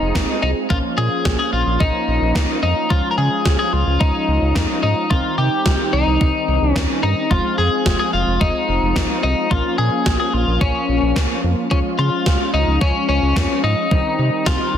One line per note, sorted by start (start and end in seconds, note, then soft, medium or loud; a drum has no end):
0.00 0.13 F1 loud
0.00 0.66 G#3 medium
0.00 0.66 C4 medium
0.00 0.41 D#4 loud
0.00 0.66 F4 medium
0.00 0.66 G#4 medium
0.15 0.26 G#1 medium
0.15 kick loud
0.15 snare loud
0.43 0.54 C2 medium
0.43 0.50 D#4 medium
0.70 0.81 A#1 loud
0.70 2.86 F3 medium
0.70 2.86 A#3 medium
0.70 2.86 C#4 medium
0.70 0.78 F4 loud
0.70 2.86 F4 medium
0.70 kick loud
0.98 1.09 A#2 medium
0.98 1.38 G#4 loud
1.25 1.37 A#1 loud
1.25 kick loud
1.25 snare loud
1.39 1.52 G#4 medium
1.53 1.64 A#1 loud
1.53 1.81 F4 medium
1.67 1.78 A#1 loud
1.80 1.92 A#1 loud
1.80 2.59 D#4 medium
1.80 kick loud
2.08 2.19 A#1 loud
2.22 2.33 A#1 loud
2.35 2.47 C#2 medium
2.35 kick loud
2.35 snare loud
2.63 2.74 F2 medium
2.63 2.91 D#4 medium
2.90 3.02 C#2 loud
2.90 5.07 F3 medium
2.90 5.07 G#3 medium
2.90 5.07 C#4 medium
2.90 3.11 F4 loud
2.90 5.07 F4 medium
2.90 kick loud
3.11 3.17 A#4 medium
3.18 3.29 C#3 medium
3.18 3.58 G#4 loud
3.46 3.57 C#2 loud
3.46 kick loud
3.46 snare loud
3.59 3.73 G#4 medium
3.73 3.84 C#2 loud
3.73 4.01 F4 medium
3.87 3.98 C#2 medium
4.00 4.12 C#2 loud
4.00 4.82 D#4 medium
4.00 kick loud
4.28 4.39 C#2 medium
4.42 4.53 C#2 medium
4.55 4.67 F2 loud
4.55 kick loud
4.55 snare loud
4.83 4.94 G#2 loud
4.83 5.11 D#4 medium
5.10 5.22 C2 loud
5.10 7.27 D#3 medium
5.10 7.27 G3 medium
5.10 7.27 C4 medium
5.10 7.27 D#4 medium
5.10 5.38 F4 loud
5.10 kick loud
5.38 5.49 C3 medium
5.38 5.95 G4 loud
5.66 5.77 C2 loud
5.66 kick loud
5.66 snare loud
5.93 6.04 C2 loud
5.93 6.72 D#4 medium
6.07 6.18 C2 medium
6.21 6.32 C2 loud
6.21 kick loud
6.48 6.59 C2 medium
6.62 6.73 C2 medium
6.72 6.87 D#2 loud
6.72 7.02 C#4 medium
6.72 kick loud
6.76 snare loud
7.03 7.15 G2 medium
7.03 7.32 D#4 medium
7.31 7.42 F1 loud
7.31 9.47 F3 medium
7.31 9.47 G#3 medium
7.31 9.47 C4 medium
7.31 7.58 F4 medium
7.31 9.47 F4 medium
7.31 kick loud
7.58 7.70 F2 medium
7.58 7.98 G#4 medium
7.86 7.97 F1 loud
7.86 kick loud
7.86 snare loud
7.99 8.13 G#4 medium
8.13 8.25 F1 medium
8.13 8.42 F4 medium
8.27 8.38 F1 loud
8.41 8.52 F1 loud
8.41 9.22 D#4 medium
8.41 kick loud
8.69 8.80 F1 loud
8.82 8.93 F1 loud
8.96 9.07 G#1 medium
8.96 kick loud
8.96 snare loud
9.23 9.35 C2 medium
9.23 9.52 D#4 medium
9.51 9.62 A#1 loud
9.51 11.67 F3 medium
9.51 11.67 A#3 medium
9.51 11.67 C#4 medium
9.51 9.77 F4 medium
9.51 11.67 F4 medium
9.51 kick loud
9.78 9.90 A#2 medium
9.78 10.19 G#4 medium
10.06 10.17 A#1 loud
10.06 kick loud
10.06 snare loud
10.20 10.33 G#4 medium
10.33 10.45 A#1 loud
10.33 10.62 F4 medium
10.47 10.59 A#1 loud
10.61 10.72 A#1 loud
10.61 11.40 C#4 medium
10.61 kick loud
10.89 11.00 A#1 medium
11.02 11.14 A#1 loud
11.16 11.27 C#2 loud
11.16 kick loud
11.16 snare loud
11.44 11.55 F2 medium
11.71 11.82 C#2 loud
11.71 13.87 F3 medium
11.71 13.87 G#3 medium
11.71 13.87 C#4 medium
11.71 11.79 C#4 loud
11.71 13.87 F4 medium
11.71 kick loud
11.99 12.10 C#3 medium
11.99 12.50 F4 loud
12.26 12.37 C#2 loud
12.26 kick loud
12.26 snare loud
12.54 12.65 C#2 loud
12.54 12.81 D#4 medium
12.68 12.79 C#2 medium
12.81 12.93 C#2 loud
12.81 13.07 C#4 medium
12.81 kick loud
13.09 13.20 C#2 medium
13.09 13.63 C#4 medium
13.22 13.34 C#2 medium
13.36 13.47 F2 loud
13.36 kick loud
13.36 snare loud
13.64 13.75 G#2 loud
13.64 14.49 D#4 loud
13.91 14.03 C2 loud
13.91 14.78 D#3 medium
13.91 14.78 G3 medium
13.91 14.78 C4 medium
13.91 14.78 D#4 medium
13.91 kick loud
14.19 14.30 C3 medium
14.46 14.58 C2 medium
14.46 14.78 F4 medium
14.46 kick loud
14.46 snare loud
14.74 14.78 C2 loud